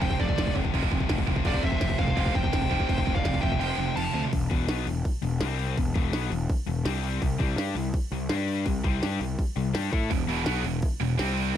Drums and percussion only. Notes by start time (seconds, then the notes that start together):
0.02 kick, crash
0.11 kick
0.20 kick
0.29 kick
0.38 kick, snare, crash
0.47 kick
0.56 kick
0.65 kick
0.74 kick, crash
0.83 kick
0.92 kick
1.00 kick
1.09 kick, snare, crash
1.18 kick
1.27 kick
1.36 kick
1.45 kick, crash
1.54 kick
1.63 kick
1.72 kick
1.81 kick, snare, crash
1.90 kick
1.99 kick
2.08 kick
2.17 kick, crash
2.26 kick
2.35 kick
2.44 kick
2.53 kick, snare, crash
2.62 kick
2.71 kick
2.80 kick
2.89 kick, crash
2.98 kick
3.07 kick
3.16 kick
3.25 kick, snare, crash
3.34 kick
3.43 kick
3.52 kick
3.61 crash
3.97 crash
4.33 kick, crash
4.51 kick, crash
4.69 snare, crash
4.87 crash
5.05 kick, crash
5.22 crash
5.41 snare, crash
5.59 crash
5.77 kick, crash
5.95 kick, crash
6.13 snare, crash
6.32 crash
6.49 kick, crash
6.67 crash
6.86 snare, crash
7.04 crash
7.22 kick, crash
7.40 kick, crash
7.58 snare, crash
7.77 crash
7.94 kick, crash
8.12 crash
8.29 snare, crash
8.48 crash
8.66 kick, crash
8.84 kick, crash
9.03 snare, crash
9.21 crash
9.39 kick, crash
9.57 crash
9.75 snare, crash
9.93 kick, crash
10.11 kick, crash
10.29 crash
10.46 snare, crash
10.64 crash
10.82 kick, crash
11.01 crash
11.19 snare, crash
11.37 crash